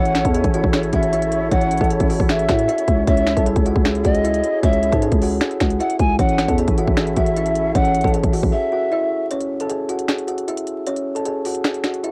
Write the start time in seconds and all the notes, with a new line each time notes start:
Already playing: A1 C#4 E4 A4 C#5 F#5
0.06 closed hi-hat
0.15 finger snap, snare, closed hi-hat
0.25 E2 A4 A5, kick, closed hi-hat
0.35 G#4 G#5, closed hi-hat
0.44 A1, kick, closed hi-hat
0.54 F#4 F#5, closed hi-hat
0.64 A1, kick
0.73 G#4 G#5, finger snap, snare, closed hi-hat
0.83 closed hi-hat
0.93 A1 F#4 E5 F#5, kick, closed hi-hat
1.03 closed hi-hat
1.13 E4 E5, closed hi-hat
1.22 closed hi-hat
1.32 closed hi-hat
1.52 A1 C#4 C#5 F#5, kick, closed hi-hat
1.61 closed hi-hat
1.71 closed hi-hat
1.78 A1 A4, kick, closed hi-hat
1.82 A5, closed hi-hat
1.90 G#4 G#5, closed hi-hat
2.00 A1, kick, closed hi-hat
2.10 F#4 F#5, open hi-hat
2.20 A1, kick
2.29 G#4 E5, finger snap, snare, closed hi-hat
2.39 closed hi-hat
2.49 A2 F#4 F#5, finger snap, kick, snare, closed hi-hat
2.59 closed hi-hat
2.68 E4 E5, closed hi-hat
2.78 closed hi-hat
2.88 C#2, kick, closed hi-hat
3.07 C#2 C#4 G#4 C#5 E5, kick, closed hi-hat
3.17 closed hi-hat
3.27 finger snap, snare, closed hi-hat
3.37 C2 A4 A5, kick, closed hi-hat
3.46 G#4 G#5, closed hi-hat
3.56 C#2, kick, closed hi-hat
3.66 F#4 F#5, closed hi-hat
3.76 C#2, kick
3.85 G#4, finger snap, snare, closed hi-hat
3.95 closed hi-hat
4.04 C#2 F#4 D#5 F#5, kick, closed hi-hat
4.15 closed hi-hat
4.24 E4 E5, closed hi-hat
4.34 closed hi-hat
4.44 closed hi-hat
4.63 C#2 C#4 C#5 E5, kick, closed hi-hat
4.73 closed hi-hat
4.83 closed hi-hat
4.92 G#2 A4 A5, kick, closed hi-hat
5.02 G#4 G#5, closed hi-hat
5.12 C#2, kick, closed hi-hat
5.22 F#4 F#5, open hi-hat
5.41 G#4 G#5, finger snap, snare, closed hi-hat
5.51 closed hi-hat
5.60 C#2 F#4 F#5, finger snap, kick, snare, closed hi-hat
5.70 closed hi-hat
5.80 E4 E5 F#5, closed hi-hat
5.90 closed hi-hat
5.99 C#2 G#5, kick, closed hi-hat
6.19 A1 C#4 E4 A4 C#5 E5 F#5, kick, closed hi-hat
6.29 closed hi-hat
6.38 finger snap, snare, closed hi-hat
6.48 E2 A4 A5, kick, closed hi-hat
6.58 G#4 G#5, closed hi-hat
6.67 A1, kick, closed hi-hat
6.78 F#4 F#5, closed hi-hat
6.87 A1, kick
6.97 G#4 G#5, finger snap, snare, closed hi-hat
7.07 closed hi-hat
7.16 A1 F#4 E5 F#5, kick, closed hi-hat
7.26 closed hi-hat
7.36 E4 E5, closed hi-hat
7.46 closed hi-hat
7.55 closed hi-hat
7.75 A1 C#4 C#5 F#5, kick, closed hi-hat
7.85 closed hi-hat
7.94 closed hi-hat
8.01 A1 A4, kick, closed hi-hat
8.05 A5, closed hi-hat
8.14 G#4 G#5, closed hi-hat
8.23 A1, kick, closed hi-hat
8.33 F#4 F#5, open hi-hat
8.43 A1, kick
8.52 G#4 E5 G#5
8.72 F#4 F#5
8.92 E4 E5
9.31 C#4 C#5, closed hi-hat
9.41 closed hi-hat
9.60 A4 A5, closed hi-hat
9.70 G#4 G#5, closed hi-hat
9.89 F#4 F#5, closed hi-hat
9.99 closed hi-hat
10.08 G#4 G#5, finger snap, snare, closed hi-hat
10.18 closed hi-hat
10.27 F#4 F#5, closed hi-hat
10.38 closed hi-hat
10.48 E4 E5, closed hi-hat
10.57 closed hi-hat
10.67 closed hi-hat
10.87 C#4 C#5, closed hi-hat
10.96 closed hi-hat
11.15 A4 A5, closed hi-hat
11.25 G#4 G#5, closed hi-hat
11.45 F#4 F#5, open hi-hat
11.55 closed hi-hat
11.64 G#4, finger snap, snare, closed hi-hat
11.74 closed hi-hat
11.84 F#4 F#5, finger snap, snare, closed hi-hat
11.94 closed hi-hat
12.03 E4 E5, closed hi-hat